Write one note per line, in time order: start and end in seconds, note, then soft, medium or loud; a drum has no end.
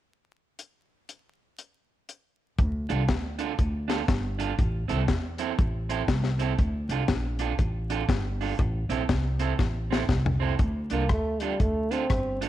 0.59 closed hi-hat medium
1.09 closed hi-hat medium
1.58 closed hi-hat medium
2.09 closed hi-hat medium
2.59 2.85 D2 loud
2.59 kick loud
2.59 closed hi-hat medium
2.89 3.06 C2 medium
2.89 3.01 D4 medium
2.89 3.02 F4 medium
2.89 3.02 A4 medium
2.89 closed hi-hat medium
3.08 3.51 D2 medium
3.08 kick loud
3.08 snare loud
3.08 closed hi-hat medium
3.39 3.51 D4 medium
3.39 3.52 F4 medium
3.39 3.52 A4 loud
3.39 closed hi-hat medium
3.59 4.01 D2 loud
3.59 kick loud
3.59 closed hi-hat medium
3.88 4.01 D4 medium
3.88 4.01 F4 medium
3.88 4.02 A4 loud
3.88 snare medium
3.88 closed hi-hat medium
4.08 4.51 G1 loud
4.08 kick loud
4.08 snare loud
4.08 closed hi-hat medium
4.39 4.51 D4 medium
4.39 4.52 F4 medium
4.39 4.52 A4 medium
4.39 closed hi-hat medium
4.59 4.85 A1 loud
4.59 kick loud
4.59 closed hi-hat medium
4.88 5.06 C2 medium
4.88 5.01 C4 medium
4.88 5.01 E4 medium
4.88 5.02 A4 loud
4.88 closed hi-hat medium
5.08 5.51 E2 medium
5.08 kick loud
5.08 snare loud
5.08 closed hi-hat medium
5.38 5.51 C4 medium
5.38 5.51 E4 medium
5.38 5.52 A4 loud
5.38 closed hi-hat medium
5.58 6.01 A1 loud
5.58 kick loud
5.58 closed hi-hat medium
5.89 6.01 C4 medium
5.89 6.02 E4 medium
5.89 6.02 A4 loud
5.89 closed hi-hat medium
6.08 6.51 C2 medium
6.08 kick loud
6.08 snare loud
6.08 closed hi-hat medium
6.24 snare medium
6.39 6.51 C4 medium
6.39 6.52 E4 medium
6.39 6.53 A4 medium
6.39 closed hi-hat medium
6.58 6.85 D2 loud
6.58 kick loud
6.58 closed hi-hat medium
6.89 7.05 C2 medium
6.89 7.02 D4 medium
6.89 7.03 F4 medium
6.89 7.03 A4 medium
6.89 closed hi-hat medium
7.08 7.51 A#1 medium
7.08 kick loud
7.08 snare loud
7.08 closed hi-hat medium
7.39 7.52 D4 medium
7.39 7.52 F4 medium
7.39 7.53 A4 medium
7.39 closed hi-hat medium
7.59 8.01 A1 loud
7.59 kick loud
7.59 closed hi-hat medium
7.90 8.02 D4 medium
7.90 8.02 F4 medium
7.90 8.03 A4 loud
7.90 closed hi-hat medium
8.09 8.51 G1 medium
8.09 kick loud
8.09 snare loud
8.09 closed hi-hat medium
8.41 8.52 D4 medium
8.41 8.53 F4 medium
8.41 8.53 A4 medium
8.41 open hi-hat medium
8.59 8.85 A1 loud
8.59 kick loud
8.59 closed hi-hat medium
8.89 9.06 A#1 medium
8.89 9.02 C4 medium
8.89 9.02 E4 medium
8.89 9.03 A4 medium
8.89 closed hi-hat medium
9.09 9.52 C2 medium
9.09 kick loud
9.09 snare loud
9.09 closed hi-hat medium
9.40 9.52 C4 medium
9.40 9.52 E4 medium
9.40 9.53 A4 medium
9.40 closed hi-hat medium
9.59 10.02 A1 loud
9.59 kick loud
9.59 snare medium
9.91 10.02 C4 medium
9.91 10.03 E4 medium
9.91 10.03 A4 medium
9.91 snare medium
10.09 10.52 C2 medium
10.09 kick loud
10.09 snare medium
10.26 floor tom medium
10.40 10.52 C4 medium
10.40 10.53 E4 medium
10.40 10.53 A4 loud
10.59 10.86 D2 loud
10.59 kick loud
10.59 closed hi-hat medium
10.90 11.07 C2 medium
10.90 11.09 A#3 medium
10.90 11.03 D4 medium
10.90 11.04 F4 medium
10.90 11.04 A4 medium
10.90 closed hi-hat medium
11.09 11.52 D2 medium
11.09 11.43 A3 medium
11.09 kick loud
11.09 cross-stick loud
11.09 closed hi-hat medium
11.40 11.62 G3 medium
11.40 11.53 D4 medium
11.40 11.54 F4 medium
11.40 11.54 A4 medium
11.40 closed hi-hat medium
11.60 12.03 D2 medium
11.60 11.94 A3 medium
11.60 kick loud
11.60 closed hi-hat medium
11.91 12.42 C4 loud
11.91 12.03 D4 medium
11.91 12.03 F4 medium
11.91 12.04 A4 loud
11.91 closed hi-hat medium
12.09 12.49 G1 medium
12.09 kick loud
12.09 cross-stick loud
12.09 closed hi-hat medium
12.41 12.49 D4 medium
12.41 12.49 F4 medium
12.41 12.49 A4 medium
12.41 closed hi-hat medium